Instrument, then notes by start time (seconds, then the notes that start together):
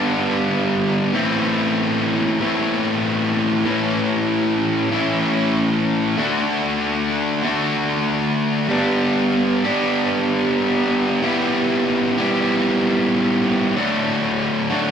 distorted electric guitar
Already playing: G2 D3 G3 B3 D4
1.13 A2 E3 A3 C4 E4
2.40 A2 E3 A3 C4 E4
3.64 A2 E3 A3 C#4 E4
4.90 A2 E3 A3 C#4 E4
6.17 D3 A3 D4 F#4
7.43 D3 A3 D4 F#4
8.69 G3 B3 D4 G4
9.64 G3 B3 D4 G4
11.22 G3 B3 E4 G4
12.18 G3 B3 E4 G4
13.76 D3 F#3 A3 D4 F#4
14.70 D3 F#3 A3 D4 F#4